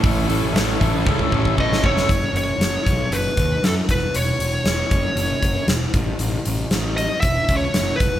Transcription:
<<
  \new Staff \with { instrumentName = "Lead electric guitar" } { \time 4/4 \key fis \dorian \tempo 4 = 117 r2. dis''8 cis''8~ | cis''8 cis''4. b'4 a'8 b'8 | cis''2. r4 | r4. dis''8 e''8. cis''8. b'8 | }
  \new Staff \with { instrumentName = "Overdriven electric guitar" } { \time 4/4 \key fis \dorian <a, e a cis' a'>8 <a, e a cis' a'>8 <a, e a cis' a'>8 <a, e a cis' a'>8 <a, e a cis' a'>8 <a, e a cis' a'>8 <a, e a cis' a'>8 <a, e a cis' a'>8 | r1 | r1 | r1 | }
  \new Staff \with { instrumentName = "Overdriven electric guitar" } { \time 4/4 \key fis \dorian <a, e a cis' e'>8 <a, e a cis' e'>8 <a, e a cis' e'>8 <a, e a cis' e'>8 <a, e a cis' e'>8 <a, e a cis' e'>8 <a, e a cis' e'>8 <a, e a cis' e'>8 | r1 | r1 | r1 | }
  \new Staff \with { instrumentName = "Picked electric bass" } { \clef bass \time 4/4 \key fis \dorian a,,8 a,,8 a,,8 a,,8 cis,8 a,,8 a,,8 eis,,8 | fis,,8 fis,,8 fis,,8 b,,8 fis,,8 dis,8 fis,8 e,,8 | e,,8 e,,8 e,,8 fis,,8 fis,,8 fis,,8 e,,8 a,,8 | a,,8 a,,8 a,,4 e,,8 cis,8 fis,,8 e,,8 | }
  \new DrumStaff \with { instrumentName = "Drums" } \drummode { \time 4/4 <hho bd>8 hho8 <hho sn>8 <hho bd>8 bd16 bd16 bd16 bd16 bd16 sn16 bd16 sn16 | <hh bd>8 hh8 <hh sn>8 <hh bd>8 hh8 <hh bd>8 <hh sn>8 <hh bd>8 | hh8 hh8 <hh sn>8 <hh bd>8 hh8 <hh bd>8 <hh sn>8 <hh bd>8 | hh8 hh8 <hh sn>8 hh8 <hh bd>8 <hh bd>8 <hh sn>8 <hh bd>8 | }
>>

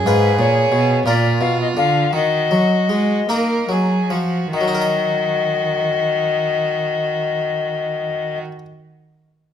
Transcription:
<<
  \new Staff \with { instrumentName = "Recorder" } { \time 6/8 \key ees \minor \tempo 4. = 48 ces''8 des''4 d''8 f''16 ees''16 f''8 | ees''4. r4. | ees''2.~ | ees''2. | }
  \new Staff \with { instrumentName = "Violin" } { \time 6/8 \key ees \minor aes'4. f'4. | ges'4. bes'8 aes'8 ges'8 | ges'2.~ | ges'2. | }
  \new Staff \with { instrumentName = "Harpsichord" } { \time 6/8 \key ees \minor <f' ces''>4. <f' bes'>4. | r4. <ees' bes'>4. | <ees ges ees' bes' ees''>2.~ | <ees ges ees' bes' ees''>2. | }
  \new Staff \with { instrumentName = "Harpsichord" } { \clef bass \time 6/8 \key ees \minor aes,8 bes,8 ces8 bes,8 ces8 d8 | ees8 ges8 aes8 bes8 ges8 f8 | r2. | r2. | }
  \new Staff \with { instrumentName = "Cello" } { \clef bass \time 6/8 \key ees \minor aes,8 bes,8 ces8 bes,8 ces8 d8 | ees8 ges8 aes8 bes8 ges8 f8 | ees2.~ | ees2. | }
>>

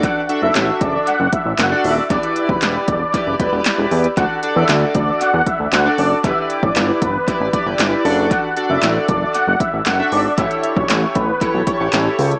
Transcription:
<<
  \new Staff \with { instrumentName = "Supersaw synth" } { \time 4/4 \key d \major \tempo 4 = 116 fis''16 r8 e''16 r8 d''8 fis''8 e''16 r16 fis''16 r16 e''16 r16 | d''16 r8 b'16 r8 d''8. r16 b'16 r4 r16 | fis''16 r8 e''16 r8 d''8 fis''8 e''16 r16 fis''16 r16 d''16 r16 | e''16 r8 d''16 r8 b'8. r16 d''16 r4 r16 |
fis''16 r8 e''16 r8 d''8 fis''8 e''16 r16 fis''16 r16 d''16 r16 | e''16 r8 cis''16 r8 b'8. r16 cis''16 r4 r16 | }
  \new Staff \with { instrumentName = "Analog polysynth" } { \time 4/4 \key d \major <d' fis' a' d''>16 r16 <d' fis' a' e''>4.~ <d' fis' a' e''>16 r4 <d' fis' a' d''>8 r16 | <e' g' b' d''>4.~ <e' g' b' d''>16 r16 <e' g' b' d''>8 <e' g' b' d''>16 <e' g' b' d''>4 r16 | <d' fis' a' d''>8 <d' fis' a' d''>4.~ <d' fis' a' d''>16 r4 <d' fis' a' d''>8 r16 | <e' g' b' d''>4.~ <e' g' b' d''>16 r16 <e' g' b' d''>8 <e' g' b' d''>16 <e' g' b' d''>8. <d' fis' a' d''>8~ |
<d' fis' a' d''>16 r16 <d' fis' a' d''>4.~ <d' fis' a' d''>16 r4 <d' fis' a' e''>8 r16 | <e' g' a' cis''>4.~ <e' g' a' cis''>16 r16 <e' g' a' cis''>8 <e' g' a' cis''>16 <e' g' a' cis''>4 r16 | }
  \new Staff \with { instrumentName = "Analog synth bass" } { \clef bass \time 4/4 \key d \major r8. fis,,16 a,,8 fis,,8 r16 fis,,16 r16 a,,16 fis,,8 ees,,8 | e,,16 r8 fis,,16 e,,8 e,,8 r16 fis,,16 e,,16 e,,16 e,,16 e,,16 e,8 | d,16 r8 e,16 d,8 d,8 r16 e,16 r16 d,16 d,8 fis,,8 | g,,16 r8 a,,16 g,,8 g,,8 r16 a,,16 r16 g,,16 g,,8 fis,,8~ |
fis,,16 r8 fis,,16 a,,8 fis,,8 r16 fis,,16 r16 a,,16 fis,,8 gis,,8 | a,,16 r8 b,,16 a,,8 a,,8 r16 b,,16 r16 a,,16 a,,8 cis,8 | }
  \new DrumStaff \with { instrumentName = "Drums" } \drummode { \time 4/4 <hh bd>8 hh8 <hc hh sn>8 <hh bd>8 hh8 <hh bd>8 <hc hh sn>8 hho8 | <hh bd>16 hh16 hh16 bd16 <hc hh sn>8 <hh bd>8 <hh bd>8 <hh bd>8 <hc hh sn>8 hho16 hh16 | <hh bd>8 hh8 <hc hh sn>8 <hh bd>8 hh8 <hh bd>8 <hc hh sn>8 hho8 | <hh bd>8 hh16 bd16 <hc hh sn>8 <hh bd>8 <hh bd>8 <hh bd>8 <hc hh sn>8 hho8 |
<hh bd>8 hh8 <hc hh sn>8 <hh bd>8 hh8 <hh bd>8 <hc hh sn>8 hho8 | <hh bd>16 hh16 hh16 bd16 <hc hh sn>8 <hh bd>8 <hh bd>8 <hh bd>8 <hc hh sn>8 hho16 hh16 | }
>>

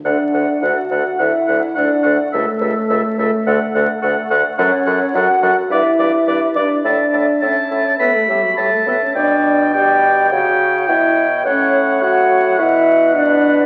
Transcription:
<<
  \new Staff \with { instrumentName = "Oboe" } { \time 4/4 \key d \major \tempo 4 = 106 fis''8 fis''8 fis''8 fis''8 fis''8 fis''8 fis''8 fis''8 | e''8 e''8 e''8 e''8 fis''8 fis''8 fis''8 fis''8 | fis''8 fis''8 fis''8 fis''8 d''8 d''8 d''8 d''8 | a''8 a''8 a''4 b''4 a''4 |
g''4 g''4 g''4 g''4 | fis''4 fis''4 fis''4 fis''4 | }
  \new Staff \with { instrumentName = "Flute" } { \time 4/4 \key d \major d''4 fis''4 e''4 d''4 | a'2.~ a'8 r8 | cis''4 fis''4 e''4. d''8 | d''4 cis''4 b'16 a'16 g'16 fis'16 g'16 a'16 b'16 cis''16 |
d''4 g''4 fis''4 e''8. r16 | cis''4 fis''4 e''4 d''4 | }
  \new Staff \with { instrumentName = "Clarinet" } { \time 4/4 \key d \major a'8 a'8 a'8 a'8 a'8 a'8 a'8 a'8 | a'8 a'8 a'8 a'8 a'8 a'8 a'8 a'8 | a'8 a'8 a'8 a'8 b'8 b'8 b'8 b'8 | e''8 e''8 e''8 e''8 e''8 e''8 e''8 e''8 |
d''4 d''4 cis''4 cis''4 | cis''4 cis''4 b'4 b'4 | }
  \new Staff \with { instrumentName = "French horn" } { \time 4/4 \key d \major d'4 fis'4 e'4 d'4 | a2.~ a8 r8 | cis'4 fis'4 e'4. d'8 | d'4 cis'4 b16 a16 g16 fis16 g16 a16 b16 cis'16 |
d'4 g'4 fis'4 e'8. r16 | cis'4 fis'4 e'4 d'4 | }
  \new Staff \with { instrumentName = "Bassoon" } { \clef bass \time 4/4 \key d \major d,8 d,8 d,8 d,8 d,8 d,8 d,8 d,8 | cis,8 cis,8 cis,8 cis,8 d,8 d,8 d,8 d,8 | fis,8 fis,8 fis,8 fis,8 g,8 g,8 g,8 g,8 | a,8 a,8 a,8 a,8 a,8 a,8 a,8 a,8 |
b,2 cis4 b,4 | a,2 b,2 | }
>>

